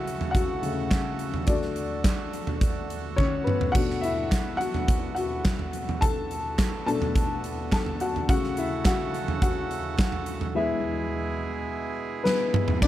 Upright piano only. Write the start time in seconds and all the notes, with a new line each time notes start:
Already playing: C#3 A3 C#4 E4 F#4 E5 F#5
0.31 F#5
0.35 F#4
0.62 C#3 A3 C#4
1.46 D3 A3 D4 F#4 D5
3.16 C#4 C#5
3.44 B3 B4
3.72 B2 A3 D4 F#4 F#5
4.01 E4 E5
4.57 F#4 F#5
5.15 F#4 F#5
6.01 A4 A5
6.86 B2 A3 D4 A4 A5
7.73 A4 A5
8.01 F#4 F#5
8.28 C#3 A3 C#4 F#4 F#5
8.59 E4 E5
8.86 F#4 F#5
9.42 F#4 F#5
10.55 E3 G#3 B3 E4 E5
12.24 B3 B4
12.82 D3 F#3 A3 D4 D5